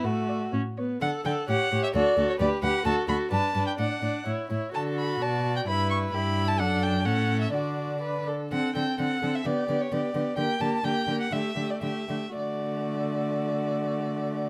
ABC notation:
X:1
M:2/4
L:1/16
Q:1/4=127
K:D
V:1 name="Violin"
z2 d2 z2 c2 | f2 g2 f3 e | d3 c d2 f2 | a2 b2 a3 g |
f4 z4 | a2 b2 a3 g | b2 c'2 b3 a | f2 g2 f3 e |
d6 z2 | f2 g2 f3 e | d3 c d4 | g2 a2 g3 f |
e3 d e4 | d8- | d8 |]
V:2 name="Violin"
F4 z4 | f2 f2 c2 c2 | A2 A2 B2 B2 | A2 A2 B2 B2 |
d2 d2 c2 c2 | A4 d4 | B4 G4 | A4 A4 |
F4 B2 A2 | A2 A2 A2 A2 | G2 G2 G2 G2 | G2 G2 G2 G2 |
G2 G2 G2 G2 | F8- | F8 |]
V:3 name="Viola"
A,4 C2 B,2 | A2 A2 G2 G2 | F2 F2 G2 G2 | F2 F2 D2 D2 |
D2 D2 E2 E2 | F8 | E4 E4 | D4 C4 |
D6 z2 | =C2 C2 C2 C2 | B,2 B,2 B,2 B,2 | _B,2 B,2 B,2 B,2 |
A,2 A,2 A,2 A,2 | A,8- | A,8 |]
V:4 name="Cello" clef=bass
A,,4 A,,4 | D,2 D,2 A,,2 A,,2 | D,,2 D,,2 D,,2 D,,2 | D,,2 D,,2 G,,2 G,,2 |
A,,2 A,,2 A,,2 A,,2 | D,4 B,,4 | G,,4 G,,4 | F,,4 A,,4 |
D,6 z2 | D,2 D,2 D,2 D,2 | D,2 D,2 D,2 D,2 | D,2 D,2 D,2 D,2 |
D,2 D,2 D,2 D,2 | D,8- | D,8 |]